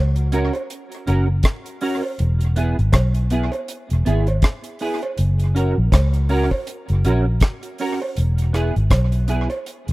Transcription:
0.00 0.50 C#2 medium
0.16 closed hi-hat soft
0.32 0.51 C#4 medium
0.32 0.52 F#4 medium
0.32 0.52 A#4 loud
0.32 closed hi-hat medium
0.53 muted clean electric guitar stroke medium
0.53 closed hi-hat soft
0.53 cowbell medium
0.70 closed hi-hat medium
0.92 closed hi-hat medium
1.07 1.42 F#1 medium
1.07 1.26 C#4 medium
1.07 1.26 F#4 medium
1.07 1.27 A#4 medium
1.07 closed hi-hat medium
1.43 kick loud
1.43 cross-stick loud
1.43 closed hi-hat medium
1.66 closed hi-hat soft
1.81 2.01 C#4 medium
1.81 2.01 F#4 medium
1.81 2.01 A#4 loud
1.81 open hi-hat medium
2.03 cowbell medium
2.19 2.75 E1 loud
2.19 closed hi-hat medium
2.41 closed hi-hat medium
2.56 2.75 B3 medium
2.56 2.76 E4 medium
2.56 2.76 G#4 medium
2.56 closed hi-hat medium
2.79 2.93 G#1 medium
2.79 closed hi-hat soft
2.92 3.49 B1 medium
2.92 kick loud
2.92 cross-stick loud
2.92 closed hi-hat medium
2.92 cowbell medium
3.15 closed hi-hat soft
3.30 3.50 B3 medium
3.30 3.51 E4 medium
3.30 3.51 G#4 medium
3.30 closed hi-hat medium
3.52 muted clean electric guitar stroke soft
3.52 closed hi-hat soft
3.52 cowbell medium
3.68 closed hi-hat medium
3.90 4.05 E1 medium
3.90 closed hi-hat soft
4.05 4.41 G#1 medium
4.05 4.25 B3 medium
4.05 4.25 E4 medium
4.05 4.26 G#4 medium
4.05 closed hi-hat medium
4.27 closed hi-hat soft
4.27 cowbell medium
4.42 kick loud
4.42 cross-stick loud
4.42 closed hi-hat medium
4.64 closed hi-hat medium
4.79 5.00 B3 medium
4.79 5.00 E4 medium
4.79 5.00 G#4 medium
4.79 open hi-hat medium
5.02 muted clean electric guitar stroke soft
5.02 closed hi-hat soft
5.02 cowbell medium
5.18 5.73 F#1 loud
5.18 closed hi-hat medium
5.39 closed hi-hat medium
5.55 5.74 C#4 medium
5.55 5.75 F#4 medium
5.55 5.75 A#4 medium
5.55 closed hi-hat medium
5.78 5.92 A#1 medium
5.92 6.48 C#2 medium
5.92 kick loud
5.92 cross-stick loud
5.92 closed hi-hat medium
5.92 cowbell medium
6.14 closed hi-hat soft
6.29 6.49 C#4 medium
6.29 6.49 F#4 medium
6.29 6.49 A#4 medium
6.29 open hi-hat medium
6.51 muted clean electric guitar stroke soft
6.51 kick medium
6.51 cowbell medium
6.67 closed hi-hat loud
6.89 7.04 F#1 medium
6.89 closed hi-hat soft
7.05 7.40 A#1 medium
7.05 7.24 C#4 medium
7.05 7.25 F#4 medium
7.05 7.25 A#4 medium
7.05 closed hi-hat medium
7.40 kick loud
7.40 cross-stick loud
7.40 closed hi-hat medium
7.63 closed hi-hat medium
7.78 7.99 C#4 medium
7.78 7.99 F#4 medium
7.78 8.00 A#4 medium
7.78 open hi-hat medium
8.02 muted clean electric guitar stroke soft
8.02 cowbell medium
8.17 8.72 E1 loud
8.17 closed hi-hat medium
8.38 closed hi-hat medium
8.53 8.73 B3 medium
8.53 8.73 E4 medium
8.53 8.74 G#4 medium
8.53 cross-stick medium
8.53 closed hi-hat medium
8.76 8.91 G#1 medium
8.76 closed hi-hat soft
8.90 9.46 B1 medium
8.90 kick loud
8.90 cross-stick loud
8.90 closed hi-hat medium
8.90 cowbell medium
9.12 closed hi-hat soft
9.28 9.48 B3 medium
9.28 9.48 E4 medium
9.28 9.49 G#4 medium
9.28 closed hi-hat medium
9.50 closed hi-hat soft
9.50 cowbell medium
9.66 closed hi-hat medium
9.88 9.93 E1 medium
9.88 closed hi-hat soft

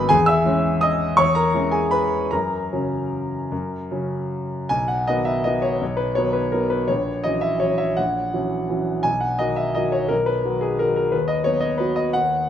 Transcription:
0.00 0.13 G#1 medium
0.00 0.14 F#3 medium
0.00 0.13 G#3 medium
0.00 0.13 B3 medium
0.00 0.14 B4 medium
0.00 0.14 B5 loud
0.09 0.45 E2 medium
0.09 0.27 G#4 medium
0.09 0.27 G#5 loud
0.26 0.79 E5 medium
0.26 0.82 E6 loud
0.45 1.15 E3 medium
0.45 1.15 G#3 medium
0.45 1.15 C#4 medium
0.81 1.16 D#5 medium
0.81 1.18 D#6 medium
1.17 1.54 E2 medium
1.17 1.35 C#5 medium
1.17 1.36 C#6 medium
1.35 1.71 A#4 medium
1.35 1.73 A#5 medium
1.54 2.28 E3 soft
1.54 2.28 G#3 soft
1.54 2.29 C#4 medium
1.71 1.91 G#4 soft
1.71 1.92 G#5 medium
1.91 2.30 B4 medium
1.91 2.32 B5 medium
2.31 2.71 F#2 medium
2.31 4.28 A#4 soft
2.31 4.31 A#5 medium
2.72 3.47 C#3 soft
2.72 3.48 F#3 soft
2.72 3.48 C#4 soft
3.52 3.90 F#2 medium
3.91 4.68 C#3 soft
3.91 4.68 F#3 soft
3.91 4.68 C#4 soft
4.69 5.07 B1 medium
4.69 4.89 G#5 medium
4.88 5.07 F#5 medium
5.07 5.42 D#3 soft
5.07 5.42 F#3 soft
5.07 5.42 B3 soft
5.07 5.26 D#5 medium
5.25 5.44 E5 medium
5.44 5.77 D#3 soft
5.44 5.78 F#3 soft
5.44 5.78 B3 soft
5.44 5.63 D#5 medium
5.62 5.98 C#5 medium
5.81 6.16 B1 soft
5.97 6.16 B4 medium
6.15 6.50 D#3 soft
6.15 6.50 F#3 soft
6.15 6.50 B3 soft
6.15 6.34 C#5 medium
6.33 6.53 B4 medium
6.52 6.86 D#3 soft
6.52 6.86 F#3 soft
6.52 6.86 B3 soft
6.52 6.71 A#4 medium
6.70 6.89 B4 medium
6.88 7.23 A#1 soft
6.88 7.24 C#5 medium
7.24 7.58 E3 soft
7.24 7.58 F#3 soft
7.24 7.58 C#4 soft
7.24 7.42 D#5 medium
7.41 7.60 E5 medium
7.60 7.94 E3 soft
7.60 7.94 F#3 soft
7.60 7.94 C#4 soft
7.60 7.79 C#5 medium
7.78 7.97 E5 medium
7.97 8.33 A#1 soft
7.97 8.86 F#5 medium
8.34 8.65 E3 soft
8.34 8.65 F#3 soft
8.34 8.65 C#4 soft
8.70 9.01 E3 soft
8.70 9.01 F#3 soft
8.70 9.01 C#4 soft
9.03 9.39 B1 soft
9.03 9.21 G#5 medium
9.21 9.39 F#5 medium
9.39 9.72 D#3 soft
9.39 9.73 F#3 soft
9.39 9.73 F#4 soft
9.39 9.57 D#5 medium
9.56 9.75 E5 medium
9.75 10.07 D#3 soft
9.75 10.07 F#3 soft
9.75 10.08 F#4 soft
9.75 9.93 D#5 medium
9.92 10.10 C#5 medium
10.09 10.44 B1 soft
10.09 10.27 A#4 medium
10.26 10.62 B4 medium
10.45 10.77 D#3 soft
10.45 10.77 F#3 soft
10.45 10.77 F#4 soft
10.61 10.80 G#4 medium
10.79 11.10 D#3 soft
10.79 11.11 F#3 soft
10.79 11.11 F#4 soft
10.79 10.95 A#4 medium
10.96 11.13 A#4 medium
11.12 11.45 D#2 soft
11.12 11.28 B4 medium
11.28 11.45 D#5 medium
11.44 11.76 F#3 soft
11.44 11.77 B3 soft
11.44 11.77 F#4 soft
11.44 11.62 C#5 medium
11.61 11.79 D#5 medium
11.78 12.10 F#3 soft
11.78 12.10 B3 soft
11.78 12.11 F#4 soft
11.78 11.96 B4 medium
11.96 12.13 D#5 medium
12.13 12.48 D#2 soft
12.13 12.49 F#5 medium

